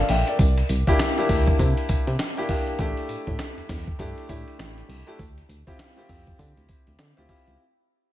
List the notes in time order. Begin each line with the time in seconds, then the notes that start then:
Already playing: A#3 D4 F4 A4 A#4
0.00 D5 F5
0.09 A#1 E5 G5, open hi-hat
0.27 A#4 D5, closed hi-hat
0.39 C2, kick, closed hi-hat, tambourine
0.58 closed hi-hat
0.69 C2, closed hi-hat, tambourine
0.87 A#3 D4 E4 G4, kick, closed hi-hat
0.99 snare, closed hi-hat, tambourine
1.17 A#3 D4 E4 G4, closed hi-hat
1.29 D2, kick, open hi-hat, tambourine
1.47 kick, closed hi-hat
1.59 C3, kick, closed hi-hat, tambourine
1.77 closed hi-hat
1.89 C3, kick, closed hi-hat, tambourine
2.07 C3, closed hi-hat
2.19 snare, closed hi-hat, tambourine
2.37 A#3 D4 E4 G4, closed hi-hat
2.49 A#3 D4 E4 G4, kick, open hi-hat
2.67 closed hi-hat
2.79 A1 A3 D4 E4 G4, kick, closed hi-hat, tambourine
2.97 closed hi-hat
3.09 A2, closed hi-hat, tambourine
3.27 A2, kick, closed hi-hat
3.39 snare, closed hi-hat, tambourine
3.57 E2, closed hi-hat
3.69 E2, kick, snare, open hi-hat, tambourine
3.87 kick, closed hi-hat
3.99 G2 A3 D4 E4 G4, kick, closed hi-hat, tambourine
4.18 closed hi-hat
4.28 A2 A3 D4 E4 G4, kick, closed hi-hat, tambourine
4.48 closed hi-hat
4.59 A1, snare, closed hi-hat, tambourine
4.78 closed hi-hat
4.89 C2, open hi-hat
5.07 A3 D4 E4 G4, closed hi-hat
5.19 D2, kick, closed hi-hat, tambourine
5.38 closed hi-hat
5.49 D2, closed hi-hat, tambourine
5.67 C4 E4 F4 G4, kick, closed hi-hat
5.79 snare, closed hi-hat, tambourine
5.97 C4 E4 F4 G4, closed hi-hat
6.09 F2, kick, open hi-hat, tambourine
6.27 kick, closed hi-hat
6.39 D3, kick, closed hi-hat, tambourine
6.57 D2, closed hi-hat
6.69 kick, closed hi-hat, tambourine
6.87 D2, closed hi-hat
6.99 D3, snare, closed hi-hat, tambourine
7.17 D2 C4 E4 F4 G4, closed hi-hat
7.29 C4 E4 F4 G4, kick, open hi-hat
7.48 C#2, closed hi-hat